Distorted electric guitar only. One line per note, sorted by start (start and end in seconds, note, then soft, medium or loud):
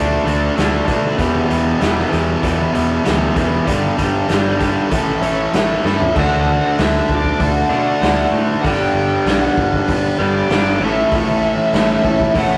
0.00 0.25 D3 medium
0.00 0.26 A3 medium
0.00 0.27 D4 medium
0.00 0.27 F#4 medium
0.26 0.56 D3 medium
0.26 0.58 A3 medium
0.26 0.58 D4 medium
0.26 0.58 F#4 medium
0.58 0.89 D3 medium
0.58 0.89 A3 medium
0.58 0.90 D4 medium
0.58 0.90 F#4 loud
0.90 1.18 D3 medium
0.90 1.18 A3 medium
0.90 1.19 D4 medium
0.90 1.19 F#4 medium
1.20 1.51 E2 medium
1.20 1.52 B2 medium
1.20 1.52 E3 medium
1.20 1.53 G3 medium
1.20 1.54 B3 loud
1.20 1.54 G4 loud
1.52 1.81 E2 medium
1.52 1.82 B2 medium
1.52 1.82 E3 medium
1.52 1.84 G3 medium
1.52 1.84 B3 medium
1.52 1.84 G4 medium
1.83 2.12 E2 medium
1.83 2.12 B2 medium
1.83 2.13 E3 medium
1.83 2.14 G3 medium
1.83 2.14 B3 medium
1.83 2.15 G4 medium
2.13 2.43 E2 medium
2.13 2.44 B2 medium
2.13 2.44 E3 medium
2.13 2.45 G3 medium
2.13 2.45 B3 medium
2.13 2.45 G4 medium
2.44 2.75 E2 medium
2.44 2.75 B2 medium
2.44 2.76 E3 medium
2.44 2.76 G3 medium
2.44 2.76 B3 medium
2.44 2.77 G4 medium
2.76 3.06 E2 medium
2.76 3.06 B2 medium
2.76 3.08 E3 medium
2.76 3.07 G3 medium
2.76 3.08 B3 medium
2.76 3.09 G4 medium
3.07 3.37 E2 medium
3.07 3.38 B2 medium
3.07 3.38 E3 medium
3.07 3.38 G3 medium
3.07 3.39 B3 medium
3.07 3.40 G4 loud
3.38 3.67 E2 medium
3.38 3.67 B2 medium
3.38 3.67 E3 medium
3.38 3.67 G3 medium
3.38 3.68 B3 medium
3.38 3.68 G4 medium
3.69 3.99 G2 medium
3.69 3.99 D3 medium
3.69 4.00 G3 medium
3.69 4.01 B3 medium
3.69 4.01 D4 medium
3.69 4.01 G4 medium
4.00 4.31 G2 medium
4.00 4.31 D3 medium
4.00 4.32 G3 medium
4.00 4.33 B3 medium
4.00 4.33 D4 medium
4.00 4.34 G4 medium
4.32 4.61 G2 medium
4.32 4.62 D3 medium
4.32 4.62 G3 medium
4.32 4.63 B3 medium
4.32 4.63 D4 medium
4.32 4.64 G4 medium
4.62 4.91 G2 medium
4.62 4.91 D3 medium
4.62 4.92 G3 medium
4.62 4.92 B3 medium
4.62 4.92 D4 medium
4.62 4.92 G4 medium
4.93 5.23 A2 medium
4.93 5.24 E3 medium
4.93 5.24 A3 medium
4.93 5.25 C#4 medium
4.93 5.25 A4 medium
5.24 5.54 A2 medium
5.24 5.55 E3 medium
5.24 5.56 A3 medium
5.24 5.56 C#4 medium
5.24 5.57 A4 medium
5.55 5.85 A2 medium
5.55 5.86 E3 medium
5.55 5.87 A3 medium
5.55 5.87 C#4 medium
5.55 5.88 A4 loud
5.86 6.15 A2 medium
5.86 6.16 E3 medium
5.86 6.16 A3 medium
5.86 6.16 C#4 medium
5.86 6.16 A4 medium
6.17 7.39 D3 medium
6.17 7.40 D4 medium
6.17 7.40 F#4 medium
6.21 7.43 A4 medium
7.41 8.63 D3 medium
7.41 8.63 D4 medium
7.41 8.64 F#4 medium
7.41 8.68 A4 medium
8.65 9.87 G3 medium
8.65 9.88 B3 medium
8.65 9.87 D4 medium
8.65 9.89 B4 medium
9.89 10.79 G3 medium
9.89 10.81 B3 medium
9.89 10.80 D4 medium
9.89 10.81 B4 medium
10.82 12.03 A2 medium
10.82 12.07 A3 medium
10.82 12.04 C#4 medium
10.82 12.04 E4 medium
10.82 12.04 A4 medium
12.05 12.58 A3 medium
12.05 12.58 C#4 medium
12.05 12.58 E4 medium
12.05 12.58 A4 medium
12.09 12.58 A2 medium